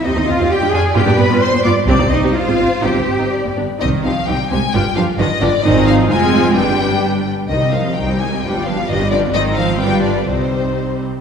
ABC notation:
X:1
M:2/4
L:1/16
Q:1/4=129
K:Cm
V:1 name="Violin section"
e4 d4- | d8 | c8- | c4 d2 z2 |
e2 f2 g2 a2 | g2 f2 e2 d2 | e2 f2 a4 | g6 z2 |
e2 f2 g2 a2 | g2 f2 e2 d2 | e2 f2 g2 d2 | c6 z2 |]
V:2 name="Violin section"
e2 f2 g2 a2 | g2 =b2 c'2 d'2 | d2 e2 f4 | g6 z2 |
[Gc]2 [Gc]2 [Gc]2 [Gc]2 | [G=B]2 [GB]2 [GB]2 [GB]2 | [Ac]4 [Ac]4 | [G=B]6 z2 |
[Ec] [Ge] [Ec] [Ge] [Ec] [Ge] [Ec] [Ge] | [G=B] [Fd] [GB] [Fd] [GB] [Fd] [GB] [Fd] | [Ec]4 [F=B]4 | [Ec]6 z2 |]
V:3 name="Viola section"
[CG] [CE] C [CG] z [A,D] [DF] z | [=B,F] [B,D] B, [B,F] z B, [B,F] z | [CG] [CE] C [CG] z [A,C] [CF] z | [CE] C [G,C] [CE] z [G,=B,] [B,D] z |
[CE]2 [CE]2 [CE]2 [CE]2 | [DF]2 [DF]2 [DF]2 [DF]2 | [CE]4 [CF]4 | [G,D]6 z2 |
[E,E] [G,C] [E,E] [G,C] [E,E] [G,C] [E,E] [G,C] | [F,D] [G,=B,] [F,D] [G,B,] [F,D] [G,B,] [F,D] [G,B,] | C4 [G,D]4 | [G,C]6 z2 |]
V:4 name="Cello section" clef=bass
E2 F2 G2 A2 | G2 =B2 c2 d2 | D2 E2 F4 | G6 z2 |
E,2 F,2 G,2 A,2 | G,2 F,2 E,2 D,2 | E,2 F,2 A,4 | G,6 z2 |
E,2 F,2 G,2 A,2 | G,2 F,2 E,2 D,2 | E,2 F,2 G,2 D,2 | C,6 z2 |]
V:5 name="Double bass section" clef=bass
E,, E,, E,, E,, z F,, F,, z | G,, G,, G,, G,, z G,, G,, z | C,, C,, C,, C,, z A,,, A,,, z | G,,, G,,, G,,, G,,, z G,,, G,,, z |
C,,2 C,,2 C,,2 C,,2 | G,,,2 G,,,2 G,,,2 G,,,2 | A,,,4 F,,,4 | G,,,6 z2 |
C,,4 C,,4 | G,,,4 G,,,4 | A,,,4 G,,,4 | C,,6 z2 |]